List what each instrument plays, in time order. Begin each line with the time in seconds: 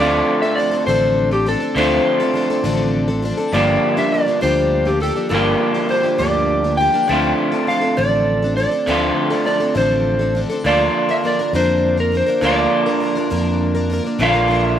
Already playing: twelve-string acoustic guitar D3 F3, electric slide guitar D5
0.00 fingered electric bass D2, clean electric guitar A3 F4, twelve-string acoustic guitar C4 D4 A4
0.42 twelve-string acoustic guitar C4 D4 A4, electric slide guitar E5
0.55 twelve-string acoustic guitar F3 C4 D4, electric slide guitar D5
0.60 twelve-string acoustic guitar A4
0.71 twelve-string acoustic guitar C4 D4 A4
0.86 fingered electric bass A1, twelve-string acoustic guitar D3 F3 C4 D4 A4, electric slide guitar C5
1.31 twelve-string acoustic guitar C4 D4 A4, electric slide guitar G4
1.46 twelve-string acoustic guitar F3 C4 D4 A4, electric slide guitar A4
1.60 twelve-string acoustic guitar C4 D4 A4
1.75 fingered electric bass D2, twelve-string acoustic guitar D3 F3 C4 D4 A4, clean electric guitar A3 F4, electric slide guitar C5
2.20 twelve-string acoustic guitar C4 D4 A4
2.34 twelve-string acoustic guitar F3 C4 D4 A4
2.50 twelve-string acoustic guitar C4 D4 A4
2.64 fingered electric bass A1, twelve-string acoustic guitar D3 F3 C4 D4 A4
3.08 twelve-string acoustic guitar C4 D4 A4
3.22 twelve-string acoustic guitar F3 C4 D4 A4
3.38 twelve-string acoustic guitar C4 D4 A4
3.53 fingered electric bass G1, twelve-string acoustic guitar G2 D3 F3 A#3 D4 G4, electric slide guitar D5
3.97 twelve-string acoustic guitar F3 A#3 D4 G4, electric slide guitar E5
4.12 twelve-string acoustic guitar F3 A#3 D4 G4, electric slide guitar D5
4.26 twelve-string acoustic guitar F3 A#3 D4 G4
4.41 fingered electric bass D2, twelve-string acoustic guitar G2 D3 F3 A#3 D4 G4, electric slide guitar C5
4.85 twelve-string acoustic guitar F3 A#3 D4 G4, electric slide guitar G4
5.00 twelve-string acoustic guitar F3 A#3 D4 G4, electric slide guitar A4
5.16 twelve-string acoustic guitar F3 A#3 D4 G4
5.29 fingered electric bass G1, twelve-string acoustic guitar G2 D3 F3 A#3 D4 G4, electric slide guitar A#4
5.74 twelve-string acoustic guitar F3 A#3 D4 G4
5.89 twelve-string acoustic guitar F3 A#3 D4 G4, electric slide guitar C5
6.03 twelve-string acoustic guitar F3 A#3 D4 G4
6.18 fingered electric bass D2, twelve-string acoustic guitar G2 D3 F3 A#3 D4 G4, electric slide guitar D5
6.64 twelve-string acoustic guitar F3 A#3 D4 G4
6.77 twelve-string acoustic guitar F3 A#3 D4 G4, electric slide guitar G5
6.92 twelve-string acoustic guitar F3 A#3 D4 G4
7.07 fingered electric bass D2, twelve-string acoustic guitar D3 F3 C4 D4 A4, clean electric guitar A3
7.12 clean electric guitar F4
7.52 twelve-string acoustic guitar C4 D4 A4
7.67 twelve-string acoustic guitar F3 C4 D4 A4, electric slide guitar F5
7.81 twelve-string acoustic guitar C4 D4 A4
7.97 fingered electric bass A1, twelve-string acoustic guitar D3 F3 C4 D4 A4, electric slide guitar D5
8.42 twelve-string acoustic guitar C4 D4 A4
8.57 twelve-string acoustic guitar F3 C4 D4 A4, electric slide guitar D5
8.71 twelve-string acoustic guitar C4 D4 A4
8.87 fingered electric bass D2, twelve-string acoustic guitar D3 F3 C4 D4 A4, clean electric guitar A3 F4
9.30 twelve-string acoustic guitar C4 D4 A4
9.45 twelve-string acoustic guitar F3 C4 D4 A4, electric slide guitar D5
9.60 twelve-string acoustic guitar C4 D4 A4
9.75 fingered electric bass A1, twelve-string acoustic guitar D3 F3 C4 D4 A4, electric slide guitar C5
10.19 twelve-string acoustic guitar C4 D4 A4
10.35 twelve-string acoustic guitar F3 C4 D4 A4
10.50 twelve-string acoustic guitar C4 D4 A4
10.64 fingered electric bass D2, twelve-string acoustic guitar D3 F3 A#3 D4 A#4, clean electric guitar F4, electric slide guitar D5
11.09 twelve-string acoustic guitar A#3 D4 A#4, electric slide guitar E5
11.24 twelve-string acoustic guitar F3 A#3 D4 A#4, electric slide guitar D5
11.39 twelve-string acoustic guitar A#3 D4 A#4
11.53 fingered electric bass F2, twelve-string acoustic guitar D3 F3 A#3 D4 A#4, electric slide guitar C5
11.97 twelve-string acoustic guitar A#3 D4 A#4, electric slide guitar A#4
12.12 twelve-string acoustic guitar F3 A#3 D4 A#4
12.17 electric slide guitar C5
12.27 twelve-string acoustic guitar A#3 D4 A#4
12.41 fingered electric bass D2, twelve-string acoustic guitar D3 F3 A#3 D4 A#4
12.45 clean electric guitar F4, electric slide guitar D5
12.86 twelve-string acoustic guitar A#3 D4 A#4
13.00 twelve-string acoustic guitar F3 A#3 D4 A#4
13.15 twelve-string acoustic guitar A#3 D4 A#4
13.30 fingered electric bass F2, twelve-string acoustic guitar D3 F3 A#3 D4 A#4
13.75 twelve-string acoustic guitar A#3 D4 A#4
13.90 twelve-string acoustic guitar F3 A#3 D4 A#4
14.05 twelve-string acoustic guitar A#3 D4 A#4
14.19 fingered electric bass A#1, twelve-string acoustic guitar A#2 D3 F3 A#3 D4 A#4, electric slide guitar F5
14.23 clean electric guitar F4
14.33 twelve-string acoustic guitar F3 A#3 D4 A#4
14.48 twelve-string acoustic guitar F3 A#3 D4 A#4
14.66 electric slide guitar E5